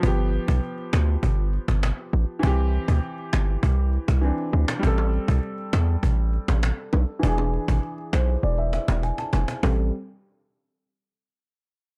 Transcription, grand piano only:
\new Staff \with { instrumentName = "Grand piano" } { \time 4/4 \key a \minor \tempo 4 = 100 << { r1 | r1 | r1 | r4. c''8 d''16 e''16 e''8 gis''16 a''16 gis''8 |
r1 | } \\ { <f b g'>1 | <e c' g'>2. <e c' d'>4 | <g c' a'>1 | <e d' gis'>1 |
<g c' a'>8 r2. r8 | } >> }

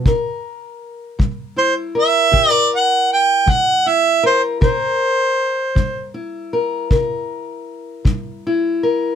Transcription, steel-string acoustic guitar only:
\new Staff \with { instrumentName = "Steel-string acoustic guitar" } { \time 12/8 \key c \mixolydian \tempo 4. = 52 << { bes'2 e'8 bes'8 g'16 bes'4.~ bes'16 e'8 bes'8 | bes'2 e'8 bes'8 bes'2 e'8 bes'8 | } \\ { c4 r8 g4 r8 c4 r8 g4 r8 | c4 r8 g4 r8 c4 r8 g4 r8 | } >> }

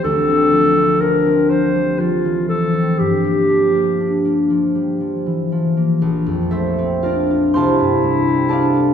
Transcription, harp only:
<<
  \new Staff \with { instrumentName = "Harp" } { \time 6/8 \key g \dorian \tempo 4. = 40 r2. | r2. | r8 <a' c'' e''>8 <f' bes' d'' f''>8 <c'' f'' a'' c'''>4 <a' d'' f'' a''>8 | }
  \new Staff \with { instrumentName = "Harp" } { \clef bass \time 6/8 \key g \dorian <d, c'>16 c'16 f16 c'16 d'16 c'16 f16 g16 f16 e16 f16 c'16 | g,16 bes16 f16 bes16 d'16 bes16 f16 g16 f16 e16 f16 bes16 | bes,,16 f,16 a16 c'16 d'16 f'16 c,16 g,16 g16 c'16 d'16 e'16 | }
>>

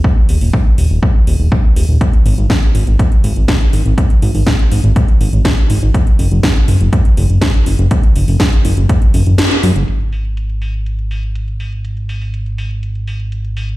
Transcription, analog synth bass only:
\new Staff \with { instrumentName = "Analog synth bass" } { \clef bass \time 4/4 \key fis \mixolydian \tempo 4 = 122 r8 dis,,16 dis,,16 r8 dis,,16 dis,,16 r8 dis,,16 dis,,16 r8 dis,,16 dis,,16 | r8 gis,,16 gis,,16 r8 gis,,16 gis,,16 r8 gis,,16 gis,,16 r8 gis,,16 gis,,16 | r8 gis,,16 gis,,16 r8 gis,,16 gis,,16 r8 gis,,16 gis,,16 r8 gis,,16 gis,,16 | r8 fis,,16 fis,,16 r8 fis,,16 fis,,16 r8 fis,,16 fis,,16 r8 fis,,16 fis,,16 |
r8 fis,,16 fis,,16 r8 fis,,16 fis,,16 r8 fis,,16 fis,,16 r8 fis,16 fis,,16 | gis,,1~ | gis,,1 | }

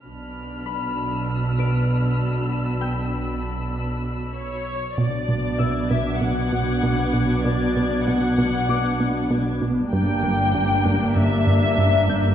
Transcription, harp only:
\new Staff \with { instrumentName = "Harp" } { \time 4/4 \key b \minor \tempo 4 = 97 r4 b''4. <b' d''''>4.~ | <b' d''''>8 <g'' g'''>2.~ <g'' g'''>8 | r4 <e'' e'''>2.~ | <e'' e'''>2 d'''2~ |
d'''2.~ d'''8 g'''8 | }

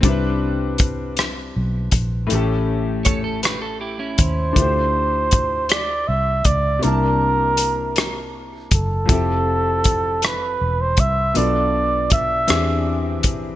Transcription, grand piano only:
\new Staff \with { instrumentName = "Grand piano" } { \time 6/8 \key c \major \tempo 4. = 53 <g c' d' e' b'>2. | <a, a cis' g' a'>2. | <a d' e' f' g' c''>2. | <c bes d' e' a''>2. |
<f c' e' g' a'>2. | <b, b d' f' a'>4. <e bis d' g' gis'>4. | }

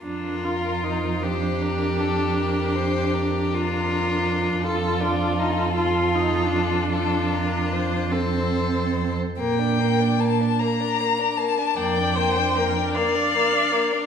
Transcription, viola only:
\new Staff \with { instrumentName = "Viola" } { \time 12/8 \key bes \major \tempo 4. = 51 d'8 f'8 ees'8 d'2. d'4. | f'4. f'8 ees'8 d'2 c'4~ c'16 r16 | r2. d''8 c''8 bes'8 d''4. | }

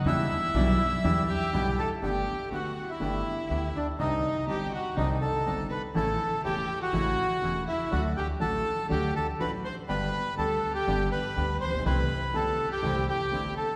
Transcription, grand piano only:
\new Staff \with { instrumentName = "Grand piano" } { \clef bass \time 4/4 \key e \minor \tempo 4 = 122 <e, d e g b e'>8 r8 <b,, b, d g b e'>8 r8 <e, d e g b e'>8 r8 <b,, b, d g b e'>8 r8 | \key g \major <g,, g, d a b g'>8 r8 <d, d a b g'>8 r8 <g,, g, d a b g'>8 r8 <d, d a b g'>8 r8 | <c, c d g c' ees'>8 r8 <g,, g, d g c' ees'>8 r8 <c, c d g c' ees'>8 r8 <g,, g, d g c' ees'>8 r8 | <a,, a, cis e a e'>8 r8 <e,, e, cis e a e'>8 r8 <a,, a, cis e a e'>8 r8 <e,, e, cis e a e'>8 r8 |
<d, d fis a fis'>8 r8 <a,, a, d fis a fis'>8 r8 <d, d fis a fis'>8 r8 <a,, a, d fis a fis'>8 r8 | <g,, g, d g b g'>8 r8 <d, d g b g'>8 r8 <g,, g, d g b g'>8 r8 <d, d g b g'>8 r32 a,,32 bes,,32 b,,32 | <c, c e a c' g'>8 r8 <g,, g, e a c' g'>8 r8 <c, c e a c' g'>8 r8 <g,, g, e a c' g'>8 r8 | }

